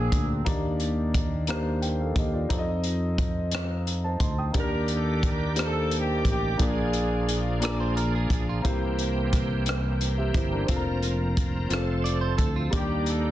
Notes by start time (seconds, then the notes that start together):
Already playing: A#2 A#3 C4 D4 G#4 C5 G5
0.12 D2, kick, closed hi-hat
0.45 D#2 D#3 A#3 D4 D#4 G4 D5, kick, closed hi-hat
0.80 closed hi-hat
1.14 kick, closed hi-hat
1.47 A#3 D4 D#4 G4 C5, cross-stick, closed hi-hat
1.82 A#4 G5, closed hi-hat
2.00 A4 F5
2.16 D#2 G4, kick, closed hi-hat
2.34 F4 D5
2.49 F2 C4 D#4 F4 A4 D5, kick, closed hi-hat
2.58 D#5
2.84 closed hi-hat
3.18 kick, closed hi-hat
3.51 cross-stick, closed hi-hat
3.87 closed hi-hat
4.04 C5 A5
4.20 D2 D#5 C6, kick, closed hi-hat
4.38 G5 D#6
4.52 D#3 A#3 D4 G4 D5, kick, closed hi-hat
4.57 D4 G4 A#4
4.88 A4, closed hi-hat
5.23 kick, closed hi-hat
5.27 A#4
5.54 A#3 D4 D#4 G4 C5, closed hi-hat
5.59 cross-stick
5.63 A4
5.91 closed hi-hat
5.98 G4
6.25 A1, kick, closed hi-hat
6.30 G4
6.57 A#1 A#2 F3 A#3 D4 F4 G#4 D5, kick, closed hi-hat
6.61 D4 F4 G#4
6.93 closed hi-hat
7.29 closed hi-hat
7.60 A#3 D4 F4 G#4 A#4 D5, closed hi-hat
7.65 cross-stick
7.80 C5
7.97 A#4, closed hi-hat
8.15 G#4
8.30 A#1, kick, closed hi-hat
8.49 F4
8.62 C2 C3 E3 A#3 C4 E4 G4 C5, kick, closed hi-hat
8.99 closed hi-hat
9.33 kick, cross-stick, closed hi-hat
9.66 cross-stick, closed hi-hat
10.01 closed hi-hat
10.18 G4 E5
10.34 G1 E4 C5, kick, closed hi-hat
10.52 D4 A#4
10.67 F1 F3 C4 F4 A4 A#4, kick, closed hi-hat
10.71 A#3 C4
10.76 A#4
11.03 closed hi-hat
11.37 kick, closed hi-hat
11.69 F1 A3 C4 F4 A4, closed hi-hat
11.73 cross-stick
12.04 D5, closed hi-hat
12.21 C5
12.38 D2 A4, kick, closed hi-hat
12.56 F4
12.70 D#2 D#3 G3 A#3 D4 G4 D5, kick, closed hi-hat
12.75 A#3 D4 G4
13.06 A4, closed hi-hat